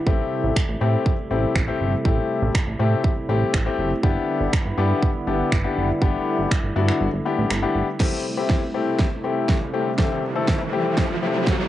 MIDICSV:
0, 0, Header, 1, 6, 480
1, 0, Start_track
1, 0, Key_signature, 0, "minor"
1, 0, Tempo, 495868
1, 65, Time_signature, 4, 2, 24, 8
1, 11308, End_track
2, 0, Start_track
2, 0, Title_t, "Grand piano"
2, 0, Program_c, 0, 0
2, 62, Note_on_c, 0, 57, 85
2, 64, Note_on_c, 0, 60, 78
2, 65, Note_on_c, 0, 64, 81
2, 67, Note_on_c, 0, 67, 94
2, 518, Note_off_c, 0, 57, 0
2, 518, Note_off_c, 0, 60, 0
2, 519, Note_off_c, 0, 64, 0
2, 520, Note_off_c, 0, 67, 0
2, 782, Note_on_c, 0, 57, 90
2, 784, Note_on_c, 0, 60, 83
2, 786, Note_on_c, 0, 64, 79
2, 787, Note_on_c, 0, 67, 95
2, 1086, Note_off_c, 0, 57, 0
2, 1087, Note_off_c, 0, 60, 0
2, 1088, Note_off_c, 0, 64, 0
2, 1089, Note_off_c, 0, 67, 0
2, 1262, Note_on_c, 0, 57, 82
2, 1264, Note_on_c, 0, 60, 79
2, 1266, Note_on_c, 0, 64, 76
2, 1268, Note_on_c, 0, 67, 89
2, 1491, Note_off_c, 0, 57, 0
2, 1492, Note_off_c, 0, 60, 0
2, 1492, Note_off_c, 0, 64, 0
2, 1493, Note_off_c, 0, 67, 0
2, 1623, Note_on_c, 0, 57, 88
2, 1624, Note_on_c, 0, 60, 82
2, 1626, Note_on_c, 0, 64, 80
2, 1628, Note_on_c, 0, 67, 95
2, 1851, Note_off_c, 0, 57, 0
2, 1852, Note_off_c, 0, 60, 0
2, 1853, Note_off_c, 0, 64, 0
2, 1853, Note_off_c, 0, 67, 0
2, 1982, Note_on_c, 0, 57, 86
2, 1984, Note_on_c, 0, 60, 79
2, 1985, Note_on_c, 0, 64, 78
2, 1987, Note_on_c, 0, 67, 95
2, 2437, Note_off_c, 0, 57, 0
2, 2438, Note_off_c, 0, 60, 0
2, 2439, Note_off_c, 0, 64, 0
2, 2440, Note_off_c, 0, 67, 0
2, 2703, Note_on_c, 0, 57, 90
2, 2705, Note_on_c, 0, 60, 80
2, 2706, Note_on_c, 0, 64, 82
2, 2708, Note_on_c, 0, 67, 98
2, 3007, Note_off_c, 0, 57, 0
2, 3007, Note_off_c, 0, 60, 0
2, 3008, Note_off_c, 0, 64, 0
2, 3009, Note_off_c, 0, 67, 0
2, 3183, Note_on_c, 0, 57, 87
2, 3185, Note_on_c, 0, 60, 77
2, 3187, Note_on_c, 0, 64, 77
2, 3188, Note_on_c, 0, 67, 98
2, 3411, Note_off_c, 0, 57, 0
2, 3412, Note_off_c, 0, 60, 0
2, 3413, Note_off_c, 0, 64, 0
2, 3413, Note_off_c, 0, 67, 0
2, 3542, Note_on_c, 0, 57, 88
2, 3543, Note_on_c, 0, 60, 84
2, 3545, Note_on_c, 0, 64, 81
2, 3547, Note_on_c, 0, 67, 100
2, 3770, Note_off_c, 0, 57, 0
2, 3771, Note_off_c, 0, 60, 0
2, 3772, Note_off_c, 0, 64, 0
2, 3773, Note_off_c, 0, 67, 0
2, 3902, Note_on_c, 0, 59, 87
2, 3904, Note_on_c, 0, 62, 82
2, 3906, Note_on_c, 0, 64, 81
2, 3907, Note_on_c, 0, 67, 100
2, 4358, Note_off_c, 0, 59, 0
2, 4358, Note_off_c, 0, 62, 0
2, 4359, Note_off_c, 0, 64, 0
2, 4360, Note_off_c, 0, 67, 0
2, 4622, Note_on_c, 0, 59, 92
2, 4623, Note_on_c, 0, 62, 82
2, 4625, Note_on_c, 0, 64, 83
2, 4626, Note_on_c, 0, 67, 97
2, 4926, Note_off_c, 0, 59, 0
2, 4927, Note_off_c, 0, 62, 0
2, 4928, Note_off_c, 0, 64, 0
2, 4928, Note_off_c, 0, 67, 0
2, 5102, Note_on_c, 0, 59, 84
2, 5103, Note_on_c, 0, 62, 80
2, 5105, Note_on_c, 0, 64, 76
2, 5106, Note_on_c, 0, 67, 92
2, 5330, Note_off_c, 0, 59, 0
2, 5331, Note_off_c, 0, 62, 0
2, 5332, Note_off_c, 0, 64, 0
2, 5333, Note_off_c, 0, 67, 0
2, 5462, Note_on_c, 0, 59, 86
2, 5463, Note_on_c, 0, 62, 80
2, 5465, Note_on_c, 0, 64, 76
2, 5466, Note_on_c, 0, 67, 95
2, 5690, Note_off_c, 0, 59, 0
2, 5691, Note_off_c, 0, 62, 0
2, 5692, Note_off_c, 0, 64, 0
2, 5693, Note_off_c, 0, 67, 0
2, 5822, Note_on_c, 0, 59, 90
2, 5824, Note_on_c, 0, 62, 79
2, 5826, Note_on_c, 0, 64, 80
2, 5827, Note_on_c, 0, 67, 97
2, 6278, Note_off_c, 0, 59, 0
2, 6278, Note_off_c, 0, 62, 0
2, 6279, Note_off_c, 0, 64, 0
2, 6280, Note_off_c, 0, 67, 0
2, 6542, Note_on_c, 0, 59, 87
2, 6544, Note_on_c, 0, 62, 81
2, 6545, Note_on_c, 0, 64, 83
2, 6547, Note_on_c, 0, 66, 97
2, 6846, Note_off_c, 0, 59, 0
2, 6847, Note_off_c, 0, 62, 0
2, 6848, Note_off_c, 0, 64, 0
2, 6849, Note_off_c, 0, 66, 0
2, 7022, Note_on_c, 0, 59, 80
2, 7023, Note_on_c, 0, 62, 75
2, 7025, Note_on_c, 0, 64, 79
2, 7027, Note_on_c, 0, 67, 90
2, 7250, Note_off_c, 0, 59, 0
2, 7251, Note_off_c, 0, 62, 0
2, 7252, Note_off_c, 0, 64, 0
2, 7253, Note_off_c, 0, 67, 0
2, 7382, Note_on_c, 0, 59, 85
2, 7383, Note_on_c, 0, 62, 76
2, 7385, Note_on_c, 0, 64, 77
2, 7387, Note_on_c, 0, 67, 98
2, 7610, Note_off_c, 0, 59, 0
2, 7611, Note_off_c, 0, 62, 0
2, 7612, Note_off_c, 0, 64, 0
2, 7613, Note_off_c, 0, 67, 0
2, 7742, Note_on_c, 0, 57, 81
2, 7743, Note_on_c, 0, 60, 73
2, 7745, Note_on_c, 0, 64, 76
2, 7747, Note_on_c, 0, 67, 88
2, 7971, Note_off_c, 0, 57, 0
2, 7971, Note_off_c, 0, 60, 0
2, 7972, Note_off_c, 0, 64, 0
2, 7973, Note_off_c, 0, 67, 0
2, 8102, Note_on_c, 0, 57, 81
2, 8104, Note_on_c, 0, 60, 75
2, 8106, Note_on_c, 0, 64, 72
2, 8107, Note_on_c, 0, 67, 88
2, 8331, Note_off_c, 0, 57, 0
2, 8331, Note_off_c, 0, 60, 0
2, 8332, Note_off_c, 0, 64, 0
2, 8333, Note_off_c, 0, 67, 0
2, 8461, Note_on_c, 0, 57, 84
2, 8463, Note_on_c, 0, 60, 77
2, 8464, Note_on_c, 0, 64, 76
2, 8466, Note_on_c, 0, 67, 92
2, 8766, Note_off_c, 0, 57, 0
2, 8766, Note_off_c, 0, 60, 0
2, 8767, Note_off_c, 0, 64, 0
2, 8768, Note_off_c, 0, 67, 0
2, 8942, Note_on_c, 0, 57, 82
2, 8943, Note_on_c, 0, 60, 73
2, 8945, Note_on_c, 0, 64, 72
2, 8946, Note_on_c, 0, 67, 88
2, 9246, Note_off_c, 0, 57, 0
2, 9247, Note_off_c, 0, 60, 0
2, 9248, Note_off_c, 0, 64, 0
2, 9248, Note_off_c, 0, 67, 0
2, 9422, Note_on_c, 0, 57, 84
2, 9424, Note_on_c, 0, 60, 76
2, 9425, Note_on_c, 0, 64, 76
2, 9427, Note_on_c, 0, 67, 95
2, 9575, Note_off_c, 0, 57, 0
2, 9576, Note_off_c, 0, 60, 0
2, 9576, Note_off_c, 0, 64, 0
2, 9577, Note_off_c, 0, 67, 0
2, 9662, Note_on_c, 0, 57, 81
2, 9663, Note_on_c, 0, 60, 78
2, 9665, Note_on_c, 0, 64, 77
2, 9667, Note_on_c, 0, 67, 88
2, 9891, Note_off_c, 0, 57, 0
2, 9891, Note_off_c, 0, 60, 0
2, 9892, Note_off_c, 0, 64, 0
2, 9893, Note_off_c, 0, 67, 0
2, 10021, Note_on_c, 0, 57, 83
2, 10023, Note_on_c, 0, 60, 79
2, 10025, Note_on_c, 0, 64, 76
2, 10026, Note_on_c, 0, 69, 91
2, 10250, Note_off_c, 0, 57, 0
2, 10251, Note_off_c, 0, 60, 0
2, 10252, Note_off_c, 0, 64, 0
2, 10253, Note_off_c, 0, 69, 0
2, 10382, Note_on_c, 0, 57, 83
2, 10383, Note_on_c, 0, 60, 76
2, 10385, Note_on_c, 0, 64, 81
2, 10386, Note_on_c, 0, 67, 92
2, 10686, Note_off_c, 0, 57, 0
2, 10687, Note_off_c, 0, 60, 0
2, 10688, Note_off_c, 0, 64, 0
2, 10688, Note_off_c, 0, 67, 0
2, 10863, Note_on_c, 0, 57, 83
2, 10864, Note_on_c, 0, 60, 73
2, 10866, Note_on_c, 0, 64, 73
2, 10867, Note_on_c, 0, 67, 90
2, 11166, Note_off_c, 0, 57, 0
2, 11167, Note_off_c, 0, 60, 0
2, 11168, Note_off_c, 0, 64, 0
2, 11169, Note_off_c, 0, 67, 0
2, 11308, End_track
3, 0, Start_track
3, 0, Title_t, "Analog synth pad"
3, 0, Program_c, 1, 89
3, 0, Note_on_c, 1, 55, 71
3, 0, Note_on_c, 1, 64, 81
3, 63, Note_on_c, 1, 48, 74
3, 63, Note_on_c, 1, 57, 65
3, 3866, Note_off_c, 1, 48, 0
3, 3866, Note_off_c, 1, 55, 0
3, 3866, Note_off_c, 1, 57, 0
3, 3866, Note_off_c, 1, 64, 0
3, 3905, Note_on_c, 1, 50, 75
3, 3905, Note_on_c, 1, 55, 69
3, 3905, Note_on_c, 1, 59, 70
3, 3905, Note_on_c, 1, 64, 83
3, 5806, Note_off_c, 1, 59, 0
3, 5826, Note_on_c, 1, 57, 69
3, 7707, Note_off_c, 1, 50, 0
3, 7707, Note_off_c, 1, 55, 0
3, 7707, Note_off_c, 1, 64, 0
3, 7726, Note_off_c, 1, 57, 0
3, 7743, Note_on_c, 1, 57, 69
3, 7744, Note_on_c, 1, 48, 74
3, 7744, Note_on_c, 1, 55, 67
3, 7744, Note_on_c, 1, 64, 79
3, 11308, Note_off_c, 1, 48, 0
3, 11308, Note_off_c, 1, 55, 0
3, 11308, Note_off_c, 1, 57, 0
3, 11308, Note_off_c, 1, 64, 0
3, 11308, End_track
4, 0, Start_track
4, 0, Title_t, "Analog synth bass"
4, 0, Program_c, 2, 38
4, 64, Note_on_c, 2, 33, 104
4, 211, Note_off_c, 2, 33, 0
4, 425, Note_on_c, 2, 33, 98
4, 499, Note_off_c, 2, 33, 0
4, 665, Note_on_c, 2, 33, 86
4, 739, Note_off_c, 2, 33, 0
4, 786, Note_on_c, 2, 45, 104
4, 932, Note_off_c, 2, 45, 0
4, 1265, Note_on_c, 2, 33, 96
4, 1412, Note_off_c, 2, 33, 0
4, 1505, Note_on_c, 2, 33, 85
4, 1652, Note_off_c, 2, 33, 0
4, 1745, Note_on_c, 2, 31, 83
4, 1892, Note_off_c, 2, 31, 0
4, 1985, Note_on_c, 2, 33, 101
4, 2132, Note_off_c, 2, 33, 0
4, 2344, Note_on_c, 2, 33, 100
4, 2418, Note_off_c, 2, 33, 0
4, 2585, Note_on_c, 2, 33, 89
4, 2659, Note_off_c, 2, 33, 0
4, 2705, Note_on_c, 2, 45, 99
4, 2852, Note_off_c, 2, 45, 0
4, 3185, Note_on_c, 2, 33, 97
4, 3331, Note_off_c, 2, 33, 0
4, 3424, Note_on_c, 2, 33, 90
4, 3571, Note_off_c, 2, 33, 0
4, 3664, Note_on_c, 2, 30, 86
4, 3811, Note_off_c, 2, 30, 0
4, 3904, Note_on_c, 2, 31, 100
4, 4051, Note_off_c, 2, 31, 0
4, 4264, Note_on_c, 2, 31, 93
4, 4338, Note_off_c, 2, 31, 0
4, 4504, Note_on_c, 2, 31, 87
4, 4577, Note_off_c, 2, 31, 0
4, 4624, Note_on_c, 2, 43, 105
4, 4771, Note_off_c, 2, 43, 0
4, 5104, Note_on_c, 2, 31, 97
4, 5251, Note_off_c, 2, 31, 0
4, 5344, Note_on_c, 2, 31, 85
4, 5491, Note_off_c, 2, 31, 0
4, 5583, Note_on_c, 2, 30, 86
4, 5730, Note_off_c, 2, 30, 0
4, 5824, Note_on_c, 2, 31, 105
4, 5971, Note_off_c, 2, 31, 0
4, 6183, Note_on_c, 2, 31, 101
4, 6257, Note_off_c, 2, 31, 0
4, 6423, Note_on_c, 2, 31, 96
4, 6497, Note_off_c, 2, 31, 0
4, 6544, Note_on_c, 2, 43, 113
4, 6691, Note_off_c, 2, 43, 0
4, 6785, Note_on_c, 2, 31, 101
4, 6858, Note_off_c, 2, 31, 0
4, 6905, Note_on_c, 2, 31, 86
4, 6979, Note_off_c, 2, 31, 0
4, 7145, Note_on_c, 2, 33, 89
4, 7218, Note_off_c, 2, 33, 0
4, 7265, Note_on_c, 2, 31, 88
4, 7412, Note_off_c, 2, 31, 0
4, 7505, Note_on_c, 2, 31, 84
4, 7578, Note_off_c, 2, 31, 0
4, 11308, End_track
5, 0, Start_track
5, 0, Title_t, "Riser"
5, 0, Program_c, 3, 103
5, 7745, Note_on_c, 3, 60, 79
5, 11308, Note_off_c, 3, 60, 0
5, 11308, End_track
6, 0, Start_track
6, 0, Title_t, "Drums"
6, 64, Note_on_c, 9, 36, 114
6, 161, Note_off_c, 9, 36, 0
6, 545, Note_on_c, 9, 36, 117
6, 548, Note_on_c, 9, 26, 114
6, 642, Note_off_c, 9, 36, 0
6, 644, Note_off_c, 9, 26, 0
6, 1025, Note_on_c, 9, 36, 107
6, 1122, Note_off_c, 9, 36, 0
6, 1505, Note_on_c, 9, 36, 107
6, 1506, Note_on_c, 9, 26, 108
6, 1602, Note_off_c, 9, 36, 0
6, 1603, Note_off_c, 9, 26, 0
6, 1985, Note_on_c, 9, 36, 117
6, 2082, Note_off_c, 9, 36, 0
6, 2466, Note_on_c, 9, 36, 118
6, 2468, Note_on_c, 9, 26, 117
6, 2562, Note_off_c, 9, 36, 0
6, 2565, Note_off_c, 9, 26, 0
6, 2945, Note_on_c, 9, 36, 102
6, 3042, Note_off_c, 9, 36, 0
6, 3424, Note_on_c, 9, 36, 109
6, 3426, Note_on_c, 9, 26, 108
6, 3521, Note_off_c, 9, 36, 0
6, 3523, Note_off_c, 9, 26, 0
6, 3904, Note_on_c, 9, 36, 112
6, 4001, Note_off_c, 9, 36, 0
6, 4385, Note_on_c, 9, 36, 121
6, 4387, Note_on_c, 9, 26, 121
6, 4482, Note_off_c, 9, 36, 0
6, 4484, Note_off_c, 9, 26, 0
6, 4864, Note_on_c, 9, 36, 107
6, 4961, Note_off_c, 9, 36, 0
6, 5344, Note_on_c, 9, 36, 112
6, 5345, Note_on_c, 9, 26, 109
6, 5441, Note_off_c, 9, 36, 0
6, 5442, Note_off_c, 9, 26, 0
6, 5824, Note_on_c, 9, 36, 112
6, 5921, Note_off_c, 9, 36, 0
6, 6305, Note_on_c, 9, 36, 121
6, 6307, Note_on_c, 9, 26, 116
6, 6401, Note_off_c, 9, 36, 0
6, 6404, Note_off_c, 9, 26, 0
6, 6664, Note_on_c, 9, 26, 63
6, 6761, Note_off_c, 9, 26, 0
6, 7265, Note_on_c, 9, 26, 107
6, 7362, Note_off_c, 9, 26, 0
6, 7744, Note_on_c, 9, 36, 108
6, 7745, Note_on_c, 9, 38, 54
6, 7745, Note_on_c, 9, 49, 92
6, 7841, Note_off_c, 9, 36, 0
6, 7842, Note_off_c, 9, 38, 0
6, 7842, Note_off_c, 9, 49, 0
6, 8224, Note_on_c, 9, 38, 56
6, 8225, Note_on_c, 9, 36, 114
6, 8321, Note_off_c, 9, 36, 0
6, 8321, Note_off_c, 9, 38, 0
6, 8704, Note_on_c, 9, 36, 105
6, 8704, Note_on_c, 9, 38, 54
6, 8801, Note_off_c, 9, 36, 0
6, 8801, Note_off_c, 9, 38, 0
6, 9184, Note_on_c, 9, 36, 111
6, 9184, Note_on_c, 9, 38, 56
6, 9280, Note_off_c, 9, 36, 0
6, 9281, Note_off_c, 9, 38, 0
6, 9664, Note_on_c, 9, 36, 110
6, 9665, Note_on_c, 9, 38, 61
6, 9761, Note_off_c, 9, 36, 0
6, 9761, Note_off_c, 9, 38, 0
6, 10144, Note_on_c, 9, 36, 114
6, 10144, Note_on_c, 9, 38, 62
6, 10241, Note_off_c, 9, 36, 0
6, 10241, Note_off_c, 9, 38, 0
6, 10624, Note_on_c, 9, 36, 103
6, 10624, Note_on_c, 9, 38, 61
6, 10721, Note_off_c, 9, 36, 0
6, 10721, Note_off_c, 9, 38, 0
6, 11104, Note_on_c, 9, 36, 110
6, 11105, Note_on_c, 9, 38, 64
6, 11200, Note_off_c, 9, 36, 0
6, 11201, Note_off_c, 9, 38, 0
6, 11308, End_track
0, 0, End_of_file